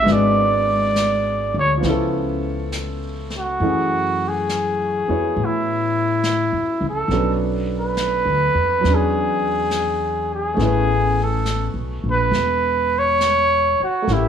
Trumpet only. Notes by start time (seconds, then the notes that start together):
Already playing: E5
0.12 D5
1.59 C#5
3.38 F#4
4.28 G#4
5.45 E4
6.89 A4
7.80 B4
8.95 G#4
10.34 G#4
11.23 A4
12.10 B4
12.99 C#5
13.84 F#4
14.13 E4